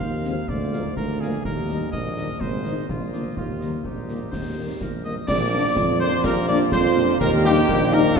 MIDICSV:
0, 0, Header, 1, 9, 480
1, 0, Start_track
1, 0, Key_signature, -3, "major"
1, 0, Tempo, 478851
1, 495, Time_signature, 2, 2, 24, 8
1, 8217, End_track
2, 0, Start_track
2, 0, Title_t, "Piccolo"
2, 0, Program_c, 0, 72
2, 5056, Note_on_c, 0, 87, 63
2, 5282, Note_off_c, 0, 87, 0
2, 5304, Note_on_c, 0, 86, 93
2, 6015, Note_on_c, 0, 84, 89
2, 6030, Note_off_c, 0, 86, 0
2, 6257, Note_off_c, 0, 84, 0
2, 6264, Note_on_c, 0, 82, 90
2, 6325, Note_off_c, 0, 82, 0
2, 6500, Note_on_c, 0, 86, 91
2, 6561, Note_off_c, 0, 86, 0
2, 6733, Note_on_c, 0, 84, 97
2, 7182, Note_off_c, 0, 84, 0
2, 7211, Note_on_c, 0, 82, 93
2, 7271, Note_off_c, 0, 82, 0
2, 7461, Note_on_c, 0, 79, 100
2, 7905, Note_off_c, 0, 79, 0
2, 7948, Note_on_c, 0, 82, 104
2, 8008, Note_off_c, 0, 82, 0
2, 8180, Note_on_c, 0, 77, 90
2, 8217, Note_off_c, 0, 77, 0
2, 8217, End_track
3, 0, Start_track
3, 0, Title_t, "Woodwind section"
3, 0, Program_c, 1, 71
3, 259, Note_on_c, 1, 68, 51
3, 259, Note_on_c, 1, 77, 50
3, 345, Note_off_c, 1, 68, 0
3, 345, Note_off_c, 1, 77, 0
3, 729, Note_on_c, 1, 68, 48
3, 729, Note_on_c, 1, 77, 49
3, 817, Note_off_c, 1, 68, 0
3, 817, Note_off_c, 1, 77, 0
3, 1221, Note_on_c, 1, 68, 53
3, 1228, Note_on_c, 1, 77, 53
3, 1307, Note_off_c, 1, 68, 0
3, 1312, Note_off_c, 1, 77, 0
3, 1689, Note_on_c, 1, 75, 48
3, 1694, Note_on_c, 1, 67, 47
3, 1778, Note_off_c, 1, 75, 0
3, 1781, Note_off_c, 1, 67, 0
3, 2165, Note_on_c, 1, 75, 49
3, 2173, Note_on_c, 1, 67, 50
3, 2254, Note_off_c, 1, 75, 0
3, 2261, Note_off_c, 1, 67, 0
3, 2637, Note_on_c, 1, 68, 47
3, 2637, Note_on_c, 1, 75, 44
3, 2728, Note_off_c, 1, 68, 0
3, 2729, Note_off_c, 1, 75, 0
3, 3130, Note_on_c, 1, 65, 42
3, 3131, Note_on_c, 1, 74, 39
3, 3219, Note_off_c, 1, 65, 0
3, 3220, Note_off_c, 1, 74, 0
3, 3614, Note_on_c, 1, 75, 38
3, 3618, Note_on_c, 1, 67, 36
3, 3702, Note_off_c, 1, 75, 0
3, 3705, Note_off_c, 1, 67, 0
3, 3848, Note_on_c, 1, 67, 42
3, 4301, Note_off_c, 1, 67, 0
3, 4316, Note_on_c, 1, 72, 60
3, 4774, Note_off_c, 1, 72, 0
3, 4821, Note_on_c, 1, 70, 45
3, 5048, Note_on_c, 1, 75, 64
3, 5061, Note_off_c, 1, 70, 0
3, 5159, Note_off_c, 1, 75, 0
3, 5290, Note_on_c, 1, 74, 109
3, 5975, Note_off_c, 1, 74, 0
3, 6016, Note_on_c, 1, 72, 94
3, 6241, Note_off_c, 1, 72, 0
3, 6254, Note_on_c, 1, 70, 96
3, 6363, Note_off_c, 1, 70, 0
3, 6507, Note_on_c, 1, 74, 94
3, 6613, Note_off_c, 1, 74, 0
3, 6741, Note_on_c, 1, 72, 94
3, 7186, Note_off_c, 1, 72, 0
3, 7232, Note_on_c, 1, 70, 105
3, 7448, Note_off_c, 1, 70, 0
3, 7479, Note_on_c, 1, 67, 90
3, 7915, Note_off_c, 1, 67, 0
3, 7950, Note_on_c, 1, 70, 111
3, 8055, Note_off_c, 1, 70, 0
3, 8217, End_track
4, 0, Start_track
4, 0, Title_t, "Cornet"
4, 0, Program_c, 2, 56
4, 0, Note_on_c, 2, 77, 78
4, 488, Note_on_c, 2, 74, 77
4, 503, Note_off_c, 2, 77, 0
4, 964, Note_off_c, 2, 74, 0
4, 970, Note_on_c, 2, 70, 80
4, 1209, Note_on_c, 2, 68, 73
4, 1224, Note_off_c, 2, 70, 0
4, 1453, Note_off_c, 2, 68, 0
4, 1457, Note_on_c, 2, 70, 77
4, 1904, Note_off_c, 2, 70, 0
4, 1926, Note_on_c, 2, 75, 86
4, 2407, Note_on_c, 2, 72, 77
4, 2422, Note_off_c, 2, 75, 0
4, 2890, Note_off_c, 2, 72, 0
4, 2896, Note_on_c, 2, 65, 64
4, 3345, Note_off_c, 2, 65, 0
4, 3380, Note_on_c, 2, 65, 62
4, 3859, Note_on_c, 2, 63, 48
4, 3874, Note_off_c, 2, 65, 0
4, 4880, Note_off_c, 2, 63, 0
4, 5050, Note_on_c, 2, 75, 68
4, 5161, Note_off_c, 2, 75, 0
4, 5285, Note_on_c, 2, 74, 113
4, 5972, Note_off_c, 2, 74, 0
4, 6022, Note_on_c, 2, 72, 105
4, 6259, Note_on_c, 2, 70, 103
4, 6274, Note_off_c, 2, 72, 0
4, 6487, Note_off_c, 2, 70, 0
4, 6493, Note_on_c, 2, 74, 115
4, 6603, Note_off_c, 2, 74, 0
4, 6742, Note_on_c, 2, 72, 108
4, 7186, Note_off_c, 2, 72, 0
4, 7224, Note_on_c, 2, 70, 124
4, 7331, Note_off_c, 2, 70, 0
4, 7466, Note_on_c, 2, 67, 118
4, 7956, Note_on_c, 2, 70, 127
4, 7971, Note_off_c, 2, 67, 0
4, 8208, Note_off_c, 2, 70, 0
4, 8217, End_track
5, 0, Start_track
5, 0, Title_t, "Euphonium"
5, 0, Program_c, 3, 58
5, 5305, Note_on_c, 3, 62, 74
5, 5776, Note_on_c, 3, 65, 89
5, 5791, Note_off_c, 3, 62, 0
5, 6258, Note_off_c, 3, 65, 0
5, 6262, Note_on_c, 3, 67, 87
5, 6707, Note_off_c, 3, 67, 0
5, 6734, Note_on_c, 3, 65, 90
5, 7182, Note_off_c, 3, 65, 0
5, 7212, Note_on_c, 3, 67, 102
5, 7697, Note_on_c, 3, 58, 99
5, 7712, Note_off_c, 3, 67, 0
5, 8172, Note_off_c, 3, 58, 0
5, 8178, Note_on_c, 3, 62, 103
5, 8217, Note_off_c, 3, 62, 0
5, 8217, End_track
6, 0, Start_track
6, 0, Title_t, "French horn section"
6, 0, Program_c, 4, 60
6, 243, Note_on_c, 4, 53, 52
6, 248, Note_on_c, 4, 56, 51
6, 248, Note_on_c, 4, 60, 46
6, 332, Note_off_c, 4, 53, 0
6, 336, Note_off_c, 4, 56, 0
6, 336, Note_off_c, 4, 60, 0
6, 733, Note_on_c, 4, 58, 52
6, 736, Note_on_c, 4, 53, 54
6, 737, Note_on_c, 4, 56, 55
6, 820, Note_off_c, 4, 58, 0
6, 823, Note_off_c, 4, 53, 0
6, 823, Note_off_c, 4, 56, 0
6, 1223, Note_on_c, 4, 56, 50
6, 1224, Note_on_c, 4, 58, 53
6, 1225, Note_on_c, 4, 53, 47
6, 1308, Note_off_c, 4, 56, 0
6, 1309, Note_off_c, 4, 58, 0
6, 1310, Note_off_c, 4, 53, 0
6, 1697, Note_on_c, 4, 51, 50
6, 1697, Note_on_c, 4, 63, 50
6, 1698, Note_on_c, 4, 55, 49
6, 1783, Note_off_c, 4, 51, 0
6, 1784, Note_off_c, 4, 55, 0
6, 1784, Note_off_c, 4, 63, 0
6, 2186, Note_on_c, 4, 51, 46
6, 2190, Note_on_c, 4, 63, 46
6, 2191, Note_on_c, 4, 55, 43
6, 2270, Note_off_c, 4, 51, 0
6, 2274, Note_off_c, 4, 55, 0
6, 2274, Note_off_c, 4, 63, 0
6, 2661, Note_on_c, 4, 63, 45
6, 2662, Note_on_c, 4, 56, 45
6, 2664, Note_on_c, 4, 51, 49
6, 2747, Note_off_c, 4, 63, 0
6, 2748, Note_off_c, 4, 56, 0
6, 2750, Note_off_c, 4, 51, 0
6, 3152, Note_on_c, 4, 53, 40
6, 3153, Note_on_c, 4, 50, 38
6, 3154, Note_on_c, 4, 58, 38
6, 3235, Note_off_c, 4, 53, 0
6, 3236, Note_off_c, 4, 50, 0
6, 3237, Note_off_c, 4, 58, 0
6, 3627, Note_on_c, 4, 51, 37
6, 3628, Note_on_c, 4, 58, 36
6, 3631, Note_on_c, 4, 55, 37
6, 3712, Note_off_c, 4, 51, 0
6, 3713, Note_off_c, 4, 58, 0
6, 3715, Note_off_c, 4, 55, 0
6, 4102, Note_on_c, 4, 55, 36
6, 4103, Note_on_c, 4, 51, 33
6, 4104, Note_on_c, 4, 58, 37
6, 4188, Note_off_c, 4, 55, 0
6, 4189, Note_off_c, 4, 51, 0
6, 4190, Note_off_c, 4, 58, 0
6, 4587, Note_on_c, 4, 51, 34
6, 4590, Note_on_c, 4, 58, 36
6, 4591, Note_on_c, 4, 55, 36
6, 4672, Note_off_c, 4, 51, 0
6, 4674, Note_off_c, 4, 58, 0
6, 4675, Note_off_c, 4, 55, 0
6, 5064, Note_on_c, 4, 55, 36
6, 5066, Note_on_c, 4, 58, 36
6, 5070, Note_on_c, 4, 51, 33
6, 5150, Note_off_c, 4, 55, 0
6, 5152, Note_off_c, 4, 58, 0
6, 5154, Note_off_c, 4, 51, 0
6, 5542, Note_on_c, 4, 53, 68
6, 5543, Note_on_c, 4, 58, 68
6, 5545, Note_on_c, 4, 62, 68
6, 5628, Note_off_c, 4, 53, 0
6, 5629, Note_off_c, 4, 58, 0
6, 5630, Note_off_c, 4, 62, 0
6, 6022, Note_on_c, 4, 53, 65
6, 6023, Note_on_c, 4, 58, 68
6, 6026, Note_on_c, 4, 62, 67
6, 6108, Note_off_c, 4, 53, 0
6, 6109, Note_off_c, 4, 58, 0
6, 6111, Note_off_c, 4, 62, 0
6, 6501, Note_on_c, 4, 53, 73
6, 6502, Note_on_c, 4, 62, 66
6, 6506, Note_on_c, 4, 58, 67
6, 6587, Note_off_c, 4, 53, 0
6, 6588, Note_off_c, 4, 62, 0
6, 6591, Note_off_c, 4, 58, 0
6, 6990, Note_on_c, 4, 53, 67
6, 6990, Note_on_c, 4, 58, 72
6, 6991, Note_on_c, 4, 62, 70
6, 7073, Note_off_c, 4, 58, 0
6, 7074, Note_off_c, 4, 53, 0
6, 7075, Note_off_c, 4, 62, 0
6, 7462, Note_on_c, 4, 55, 83
6, 7463, Note_on_c, 4, 58, 81
6, 7464, Note_on_c, 4, 63, 74
6, 7548, Note_off_c, 4, 55, 0
6, 7548, Note_off_c, 4, 58, 0
6, 7549, Note_off_c, 4, 63, 0
6, 7945, Note_on_c, 4, 58, 74
6, 7945, Note_on_c, 4, 63, 84
6, 7946, Note_on_c, 4, 55, 85
6, 8029, Note_off_c, 4, 58, 0
6, 8030, Note_off_c, 4, 63, 0
6, 8031, Note_off_c, 4, 55, 0
6, 8217, End_track
7, 0, Start_track
7, 0, Title_t, "Trombone section"
7, 0, Program_c, 5, 61
7, 5309, Note_on_c, 5, 53, 71
7, 5310, Note_on_c, 5, 58, 80
7, 7182, Note_off_c, 5, 53, 0
7, 7183, Note_off_c, 5, 58, 0
7, 7224, Note_on_c, 5, 58, 92
7, 7231, Note_on_c, 5, 51, 90
7, 8142, Note_off_c, 5, 51, 0
7, 8181, Note_on_c, 5, 53, 95
7, 8217, Note_off_c, 5, 53, 0
7, 8217, Note_off_c, 5, 58, 0
7, 8217, End_track
8, 0, Start_track
8, 0, Title_t, "Tuba"
8, 0, Program_c, 6, 58
8, 13, Note_on_c, 6, 39, 57
8, 414, Note_off_c, 6, 39, 0
8, 494, Note_on_c, 6, 38, 61
8, 895, Note_off_c, 6, 38, 0
8, 979, Note_on_c, 6, 38, 63
8, 1378, Note_off_c, 6, 38, 0
8, 1452, Note_on_c, 6, 39, 60
8, 1855, Note_off_c, 6, 39, 0
8, 1934, Note_on_c, 6, 34, 61
8, 2293, Note_off_c, 6, 34, 0
8, 2413, Note_on_c, 6, 32, 59
8, 2816, Note_off_c, 6, 32, 0
8, 2898, Note_on_c, 6, 34, 48
8, 3299, Note_off_c, 6, 34, 0
8, 3380, Note_on_c, 6, 39, 48
8, 3780, Note_off_c, 6, 39, 0
8, 3871, Note_on_c, 6, 34, 44
8, 4266, Note_off_c, 6, 34, 0
8, 4346, Note_on_c, 6, 39, 43
8, 4744, Note_off_c, 6, 39, 0
8, 4828, Note_on_c, 6, 34, 51
8, 5225, Note_off_c, 6, 34, 0
8, 5307, Note_on_c, 6, 34, 84
8, 5704, Note_off_c, 6, 34, 0
8, 5793, Note_on_c, 6, 41, 78
8, 6186, Note_off_c, 6, 41, 0
8, 6268, Note_on_c, 6, 34, 81
8, 6663, Note_off_c, 6, 34, 0
8, 6747, Note_on_c, 6, 41, 86
8, 7142, Note_off_c, 6, 41, 0
8, 7222, Note_on_c, 6, 39, 104
8, 7619, Note_off_c, 6, 39, 0
8, 7703, Note_on_c, 6, 34, 100
8, 8099, Note_off_c, 6, 34, 0
8, 8182, Note_on_c, 6, 38, 104
8, 8217, Note_off_c, 6, 38, 0
8, 8217, End_track
9, 0, Start_track
9, 0, Title_t, "Drums"
9, 6, Note_on_c, 9, 35, 65
9, 106, Note_off_c, 9, 35, 0
9, 247, Note_on_c, 9, 38, 37
9, 347, Note_off_c, 9, 38, 0
9, 486, Note_on_c, 9, 35, 71
9, 587, Note_off_c, 9, 35, 0
9, 732, Note_on_c, 9, 38, 35
9, 832, Note_off_c, 9, 38, 0
9, 972, Note_on_c, 9, 35, 67
9, 1072, Note_off_c, 9, 35, 0
9, 1219, Note_on_c, 9, 38, 36
9, 1319, Note_off_c, 9, 38, 0
9, 1452, Note_on_c, 9, 35, 71
9, 1553, Note_off_c, 9, 35, 0
9, 1694, Note_on_c, 9, 38, 35
9, 1795, Note_off_c, 9, 38, 0
9, 1936, Note_on_c, 9, 35, 69
9, 2036, Note_off_c, 9, 35, 0
9, 2180, Note_on_c, 9, 38, 34
9, 2280, Note_off_c, 9, 38, 0
9, 2414, Note_on_c, 9, 35, 74
9, 2515, Note_off_c, 9, 35, 0
9, 2657, Note_on_c, 9, 38, 31
9, 2758, Note_off_c, 9, 38, 0
9, 2900, Note_on_c, 9, 35, 70
9, 3000, Note_off_c, 9, 35, 0
9, 3141, Note_on_c, 9, 38, 36
9, 3241, Note_off_c, 9, 38, 0
9, 3379, Note_on_c, 9, 35, 69
9, 3479, Note_off_c, 9, 35, 0
9, 3621, Note_on_c, 9, 38, 31
9, 3722, Note_off_c, 9, 38, 0
9, 3855, Note_on_c, 9, 35, 62
9, 3955, Note_off_c, 9, 35, 0
9, 4097, Note_on_c, 9, 38, 32
9, 4198, Note_off_c, 9, 38, 0
9, 4339, Note_on_c, 9, 35, 64
9, 4339, Note_on_c, 9, 38, 56
9, 4439, Note_off_c, 9, 35, 0
9, 4439, Note_off_c, 9, 38, 0
9, 4821, Note_on_c, 9, 35, 67
9, 4821, Note_on_c, 9, 38, 46
9, 4921, Note_off_c, 9, 35, 0
9, 4921, Note_off_c, 9, 38, 0
9, 5296, Note_on_c, 9, 35, 93
9, 5296, Note_on_c, 9, 38, 69
9, 5296, Note_on_c, 9, 49, 57
9, 5396, Note_off_c, 9, 35, 0
9, 5396, Note_off_c, 9, 38, 0
9, 5396, Note_off_c, 9, 49, 0
9, 5777, Note_on_c, 9, 35, 83
9, 5777, Note_on_c, 9, 38, 88
9, 5878, Note_off_c, 9, 35, 0
9, 5878, Note_off_c, 9, 38, 0
9, 6138, Note_on_c, 9, 38, 52
9, 6238, Note_off_c, 9, 38, 0
9, 6257, Note_on_c, 9, 35, 91
9, 6257, Note_on_c, 9, 38, 82
9, 6357, Note_off_c, 9, 35, 0
9, 6357, Note_off_c, 9, 38, 0
9, 6501, Note_on_c, 9, 38, 54
9, 6601, Note_off_c, 9, 38, 0
9, 6736, Note_on_c, 9, 35, 90
9, 6736, Note_on_c, 9, 38, 93
9, 6837, Note_off_c, 9, 35, 0
9, 6837, Note_off_c, 9, 38, 0
9, 6861, Note_on_c, 9, 38, 56
9, 6961, Note_off_c, 9, 38, 0
9, 6981, Note_on_c, 9, 38, 67
9, 7081, Note_off_c, 9, 38, 0
9, 7224, Note_on_c, 9, 35, 92
9, 7224, Note_on_c, 9, 38, 75
9, 7224, Note_on_c, 9, 49, 35
9, 7325, Note_off_c, 9, 35, 0
9, 7325, Note_off_c, 9, 38, 0
9, 7325, Note_off_c, 9, 49, 0
9, 7704, Note_on_c, 9, 35, 91
9, 7704, Note_on_c, 9, 38, 88
9, 7804, Note_off_c, 9, 35, 0
9, 7804, Note_off_c, 9, 38, 0
9, 8065, Note_on_c, 9, 38, 59
9, 8166, Note_off_c, 9, 38, 0
9, 8181, Note_on_c, 9, 35, 88
9, 8181, Note_on_c, 9, 38, 83
9, 8217, Note_off_c, 9, 35, 0
9, 8217, Note_off_c, 9, 38, 0
9, 8217, End_track
0, 0, End_of_file